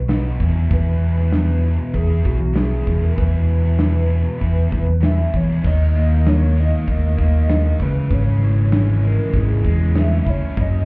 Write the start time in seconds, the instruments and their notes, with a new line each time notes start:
Already playing: fingered electric bass B1, analog synth lead B4
0.08 overdriven electric guitar B2 F#3 B3 D#4 F#4, snare, open hi-hat
0.40 fingered electric bass E2, overdriven electric guitar E2 B2 E3 B3 E4 G#4, kick
0.56 overdriven electric guitar E3 B3 E4 G#4
0.71 fingered electric bass E2, overdriven electric guitar E2 B2 E3 B3 E4 G#4, analog synth lead B4, kick, open hi-hat
1.17 overdriven electric guitar E3 B3 E4 G#4
1.32 overdriven electric guitar E2 B2 E3 B3 E4 G#4, snare, open hi-hat
1.62 overdriven electric guitar E3 B3 E4 G#4
1.78 muted overdriven electric guitar stroke
1.93 fingered electric bass E2, overdriven electric guitar E3 B3 E4 G#4, analog synth lead G#4, kick, open hi-hat
2.08 overdriven electric guitar E3 B3 E4 G#4
2.23 fingered electric bass B1, overdriven electric guitar E3 B3 E4 G#4, analog synth lead F#4, kick
2.38 muted overdriven electric guitar stroke
2.53 overdriven electric guitar E2 B2 E3 B3 E4 G#4, snare, open hi-hat
2.57 analog synth lead G#4
2.87 fingered electric bass E2, kick
2.99 overdriven electric guitar E3 B3 E4 G#4
3.04 analog synth lead A#4
3.14 overdriven electric guitar E2 B2 E3 B3 E4 G#4, fingered electric bass E2, kick, open hi-hat
3.18 analog synth lead B4
3.62 overdriven electric guitar E3 B3 E4 G#4
3.77 overdriven electric guitar E2 B2 E3 B3 E4 G#4, snare, open hi-hat
4.08 overdriven electric guitar E3 B3 E4 G#4
4.24 muted overdriven electric guitar stroke
4.38 fingered electric bass E2, overdriven electric guitar E3 B3 E4 G#4, kick, open hi-hat
4.53 overdriven electric guitar E3 B3 E4 G#4
4.69 fingered electric bass E2, overdriven electric guitar E3 B3 E4 G#4, kick
4.86 muted overdriven electric guitar stroke
5.00 overdriven electric guitar E2 B2 E3 B3 E4 G#4, snare, open hi-hat
5.05 analog synth lead E5
5.34 fingered electric bass E3, analog synth lead C#5, kick
5.48 overdriven electric guitar E3 B3 E4 G#4
5.64 fingered electric bass D#2, distorted electric guitar D#3 A#3 D#4 F#4, overdriven electric guitar D#3, analog synth lead D#5, kick, crash
5.96 overdriven electric guitar A#3, analog synth lead D#5, open hi-hat
6.26 overdriven electric guitar D#3, analog synth lead C#5, snare, open hi-hat
6.56 distorted electric guitar D#3 A#3 D#4 F#4, overdriven electric guitar A#3, analog synth lead D#5, open hi-hat
6.88 fingered electric bass D#2, overdriven electric guitar D#3, analog synth lead D#5, kick, open hi-hat
7.17 fingered electric bass D#2, overdriven electric guitar A#3, kick, open hi-hat
7.49 overdriven electric guitar D#4, snare, open hi-hat
7.79 fingered electric bass C#2, distorted electric guitar C#3 E3 G#3 C#4 E4, overdriven electric guitar C#3, analog synth lead B4, kick, open hi-hat
8.11 fingered electric bass G#1, overdriven electric guitar C#3, analog synth lead C#5, kick, open hi-hat
8.42 overdriven electric guitar E3, analog synth lead C#5, open hi-hat
8.71 distorted electric guitar C#3 E3 G#3 C#4 E4, overdriven electric guitar E3, snare, open hi-hat
9.03 overdriven electric guitar G#3, analog synth lead A#4, open hi-hat
9.33 fingered electric bass G#1, overdriven electric guitar E3, analog synth lead G#4, kick, open hi-hat
9.65 fingered electric bass E2, overdriven electric guitar G#3, kick, open hi-hat
9.95 overdriven electric guitar C#4, analog synth lead E5, snare, open hi-hat
10.26 fingered electric bass C#2, overdriven electric guitar E4, analog synth lead C#5, kick, open hi-hat
10.56 distorted electric guitar F#2 C#3 F#3 A#3 C#4 F#4, fingered electric bass F#2, overdriven electric guitar F#2, kick, open hi-hat
10.61 analog synth lead D#5